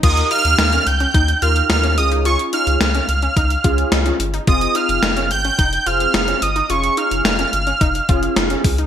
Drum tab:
CC |x---------------|----------------|----------------|----------------|
HH |xxxxxxxxxxxxxxxx|xxxxxxxxxxxxxxxx|xxxxxxxxxxxxxxxx|xxxxxxxxxxxxxxox|
SD |----o-------o---|----o-------o---|----o-------o---|----o-------o---|
BD |o-------o-------|--------o-o-----|o-------o-------|--------o-o---o-|